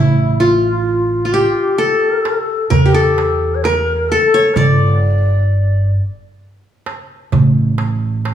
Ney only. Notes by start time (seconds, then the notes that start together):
Already playing: E4
0.39 F4
1.32 G4
1.77 A4
2.69 A#4
2.93 A4
3.55 C#5
3.63 A#4
4.09 A4
4.55 D5